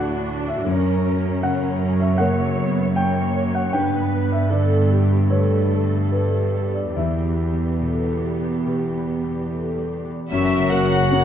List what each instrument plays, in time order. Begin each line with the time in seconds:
Already playing: grand piano D2 A2 A3 F#4 C#5 D5 F#5, cello section D2, harp D3 F#3 A3 D4 E4 A4, viola section D4 F#4
0.16 harp D4
0.48 grand piano E5
0.66 harp F#2, grand piano F#2, cello section F#2, viola section C#4 A#4
0.92 harp C#4
1.05 viola section C#4
1.17 harp A#3
1.42 grand piano C#3 F#5, harp B3, viola section A#4
1.67 harp A#3
1.93 harp C#4
2.00 grand piano E5
2.18 harp C#3, viola section A#3 C#5, grand piano A#3 A#4 C#5 F#5
2.44 harp C#4
2.57 viola section B3
2.69 harp A#3
2.95 viola section A#3 C#5, harp B3, grand piano G5
3.21 harp A#3
3.47 harp C#4
3.55 grand piano F#5
3.73 harp G2, cello section G2, grand piano G2 G5, viola section B3 B4
3.99 harp B3
4.25 harp G3
4.32 grand piano E5
4.51 grand piano D3 D5, harp A3, viola section B3 A4
4.77 harp G3
4.90 viola section G4
5.04 harp B3
5.29 harp D3, viola section A3 A4, grand piano B3 G4 B4 C#5
5.57 harp B3
5.84 harp G3
6.11 viola section G3, harp A3, grand piano B4
6.40 harp G3
6.68 harp B3
6.75 grand piano D5
6.96 harp E2, grand piano E2 E5, cello section E2, viola section B3 G4
7.25 harp B3
7.53 harp G3
7.80 grand piano B2, harp A3
8.09 harp G3
8.37 harp B3
8.65 harp B2, grand piano B3 G4 B4
8.94 harp B3
9.22 harp G3
9.51 harp A3
9.78 harp G3
10.05 harp B3
10.31 double bass section F#1, harp F#2, grand piano F#2, cello section F#2, french horn section F#3 C#4, viola section C#4, violin section F#4 A#4 E5, clarinet F#4, oboe C#5
10.58 harp C#3
10.72 grand piano A#3 F#4, violin section F#5
10.85 harp A#3
11.11 viola section A#3 C#4, grand piano C#4 F#4, harp F#4, violin section A#4 C#5